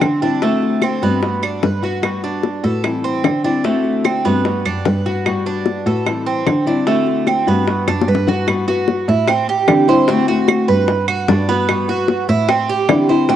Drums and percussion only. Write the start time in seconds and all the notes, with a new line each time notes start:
0.01 high bongo, low bongo, claves
0.22 high bongo
0.42 high bongo
0.62 high bongo
0.82 high bongo, claves
1.02 high bongo
1.23 high bongo
1.43 high bongo, claves
1.63 high bongo, low bongo
2.03 high bongo, claves
2.23 high bongo
2.43 high bongo
2.64 high bongo
2.84 high bongo, claves
3.24 high bongo, low bongo, claves
3.44 high bongo
3.65 high bongo
3.84 high bongo
4.05 high bongo, claves
4.25 high bongo
4.45 high bongo
4.65 high bongo, claves
4.85 high bongo, low bongo
5.26 high bongo, claves
5.46 high bongo
5.66 high bongo
5.86 high bongo
6.06 high bongo, claves
6.46 high bongo, low bongo, claves
6.67 high bongo
6.87 high bongo
7.06 high bongo
7.27 high bongo, claves
7.47 high bongo
7.68 high bongo
7.88 high bongo, claves
8.02 high bongo
8.15 low bongo
8.28 low bongo
8.48 high bongo, claves
8.68 high bongo
8.88 high bongo
9.08 high bongo
9.28 high bongo, claves
9.68 high bongo, low bongo, claves
9.88 high bongo
10.08 high bongo
10.28 high bongo
10.48 high bongo, claves
10.68 high bongo
10.88 high bongo
11.08 claves
11.28 high bongo, low bongo
11.49 high bongo
11.69 high bongo, claves
11.88 high bongo
12.08 high bongo
12.28 high bongo
12.49 high bongo, claves
12.89 high bongo, low bongo, claves
13.09 high bongo
13.29 high bongo